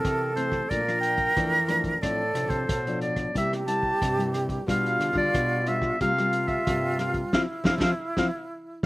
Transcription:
Already playing: E3 C4 A4 A#4
0.03 C3, kick, cross-stick, closed hi-hat
0.35 E3 A3 C4 C5, closed hi-hat
0.52 kick, cross-stick
0.69 A#2 F3 A3 D4 A#4 D5, kick, closed hi-hat
0.87 F3 D4, cross-stick, closed hi-hat
1.00 G5, closed hi-hat
1.18 kick, closed hi-hat
1.36 F2 E3 F3 A3 D4, kick, cross-stick, closed hi-hat
1.68 F3 A3 D4, cross-stick, closed hi-hat
1.84 kick, closed hi-hat
2.01 A2 F3 C4 D4 A4 D5, kick, cross-stick, closed hi-hat
2.34 C3 F3 C4 D4, cross-stick, closed hi-hat
2.48 C3 C5, kick, closed hi-hat
2.69 A2 B2, kick, cross-stick, closed hi-hat
2.87 F3 D4, closed hi-hat
3.01 D5, closed hi-hat
3.16 kick, cross-stick, closed hi-hat
3.34 C3 G3 A#3 E4 G4 E5, kick, closed hi-hat
3.53 cross-stick, closed hi-hat
3.66 G3 A#3 E4 A5, closed hi-hat
3.83 kick
4.01 G2 C3, kick, cross-stick, closed hi-hat
4.18 G3 A#3 E4, closed hi-hat
4.34 cross-stick, closed hi-hat
4.49 kick, closed hi-hat
4.66 B2 G3 D4 F4 F5, kick, cross-stick, closed hi-hat
4.86 closed hi-hat
5.00 D3, cross-stick, closed hi-hat
5.13 D3 G3 D4 F4, kick
5.17 D5
5.34 B2, kick, cross-stick, closed hi-hat
5.66 G3 D4 F4 E5, closed hi-hat
5.82 kick, cross-stick
6.00 C3 G3 A#3 F4 F5, kick, closed hi-hat
6.18 G3 A#3 F4, cross-stick, closed hi-hat
6.33 closed hi-hat
6.48 E5, kick, closed hi-hat
6.67 G2 C3 G3 A#3 F4, kick, cross-stick, closed hi-hat
6.99 G3 A#3 F4 F5, cross-stick, closed hi-hat
7.14 kick, closed hi-hat
7.33 F3 C4 E4 F4 F5, kick, snare
7.64 F3 C4 E4 F4 F5, kick, snare
7.78 F3 C4 E4 F4, kick, snare
7.82 F5
8.17 F3 C4 E4 F4 F5, kick, snare

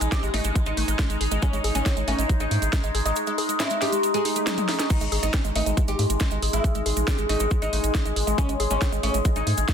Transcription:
Already playing: G#3 D#4 D#5 G#5
0.01 A1 G#3, closed hi-hat, cabasa
0.12 C4 G4, kick, snare, closed hi-hat, cabasa
0.23 G#1 G#3, closed hi-hat, cabasa
0.34 G#1 A3 D#4, open hi-hat
0.44 G#1 G#3, closed hi-hat, cabasa
0.55 G#3, kick, closed hi-hat, cabasa
0.66 G#1 G#3 D#4, closed hi-hat, cabasa
0.77 G#1 A3, open hi-hat
0.88 G#1 G#3, closed hi-hat, cabasa
0.99 G#3, kick, snare, closed hi-hat, cabasa
1.10 G#1 G#3, closed hi-hat, cabasa
1.21 G#1 G#4, open hi-hat
1.31 G#1 G#3, closed hi-hat, cabasa
1.42 G#3 C#4, kick, closed hi-hat, cabasa
1.53 G#1 G#3, closed hi-hat, cabasa
1.64 G#1 G#4, open hi-hat
1.75 G#1 G#3 C#4, closed hi-hat, cabasa
1.86 C4, kick, snare, closed hi-hat, cabasa
1.97 G#1 G#3, closed hi-hat, cabasa
2.08 G#1 A3 C#4, open hi-hat
2.19 G#1 G#3, closed hi-hat, cabasa
2.29 G#3 C#6, kick, closed hi-hat, cabasa
2.40 G#1 G#3 D#4, closed hi-hat, cabasa
2.51 G#2 A3, open hi-hat
2.62 G#1 G#3, closed hi-hat, cabasa
2.73 G#3, kick, snare, closed hi-hat, cabasa
2.84 G#1 G#3, closed hi-hat, cabasa
2.95 G#1 G#4, open hi-hat
3.05 G#1 G#3 D#4, closed hi-hat, cabasa
3.16 G#3, closed hi-hat, cabasa
3.27 G#3, closed hi-hat, cabasa
3.38 G#4, open hi-hat
3.49 G#3, closed hi-hat, cabasa
3.60 C4 E4, snare, closed hi-hat, cabasa
3.70 G#3, closed hi-hat, cabasa
3.82 A3 G4, snare, open hi-hat
3.92 G#3, closed hi-hat, cabasa
4.03 G#3, closed hi-hat, swell, cabasa
4.14 G#3 G#4, closed hi-hat, cabasa
4.25 D#4, open hi-hat
4.36 A3, closed hi-hat, cabasa
4.47 G#3, snare, closed hi-hat, high tom, cabasa
4.58 G#3, closed hi-hat, high tom, cabasa
4.69 A3, snare, open hi-hat
4.79 G#4, snare, closed hi-hat, cabasa
4.90 G#3 D#4 G#4, kick, closed hi-hat, crash, cabasa
5.01 G#1 G#3, closed hi-hat, cabasa
5.12 G#1 G#4, open hi-hat
5.23 G#1 G#3 D#4, closed hi-hat, cabasa
5.33 C4, kick, snare, closed hi-hat, cabasa
5.45 G#1 G#3, closed hi-hat, cabasa
5.55 G#1 A3 D#4, open hi-hat
5.66 G#1 G#3, closed hi-hat, cabasa
5.77 G#3 G#5, kick, closed hi-hat, cabasa
5.88 G#1 G#3 G4, closed hi-hat, cabasa
5.99 G#2 A3, open hi-hat
6.10 G#1 G#3, closed hi-hat, cabasa
6.20 G#3, kick, snare, closed hi-hat, cabasa
6.31 G#1 G#3, closed hi-hat, cabasa
6.42 G#1 G#4, open hi-hat
6.53 G#1 G#3 E4, closed hi-hat, cabasa
6.64 G#3, kick, closed hi-hat, cabasa
6.75 G#1 G#3, closed hi-hat, cabasa
6.86 G#1 G#4, open hi-hat
6.97 A1 G#3, closed hi-hat, cabasa
7.08 C4 G4, kick, snare, closed hi-hat, cabasa
7.18 G#1 G#3, closed hi-hat, cabasa
7.29 G#1 A3 D#4, open hi-hat
7.40 G#1 G#3, closed hi-hat, cabasa
7.51 kick, closed hi-hat, cabasa
7.62 G#1 G#3 D#4, closed hi-hat, cabasa
7.73 G#1 A3, open hi-hat
7.84 G#1 G#3, closed hi-hat, cabasa
7.95 G#3, kick, snare, closed hi-hat, cabasa
8.05 G#1 G#3, closed hi-hat, cabasa
8.16 G#1 G#4, open hi-hat
8.27 G#1 G#3, closed hi-hat, cabasa
8.38 G#3 C#4, kick, closed hi-hat, cabasa
8.49 G#1 G#3, closed hi-hat, cabasa
8.60 G#1 G#4, open hi-hat
8.70 G#1 G#3 C#4, closed hi-hat, cabasa
8.82 C4, kick, snare, closed hi-hat, cabasa
8.92 G#1 G#3, closed hi-hat, cabasa
9.03 G#1 A3 C#4, open hi-hat
9.14 G#1 G#3, closed hi-hat, cabasa
9.25 G#3 C6, kick, closed hi-hat, cabasa
9.36 G#1 G#3 D#4, closed hi-hat, cabasa
9.47 G#2 A3, open hi-hat
9.58 G#1 G#3, closed hi-hat, cabasa
9.68 G#3, kick, snare, closed hi-hat, cabasa

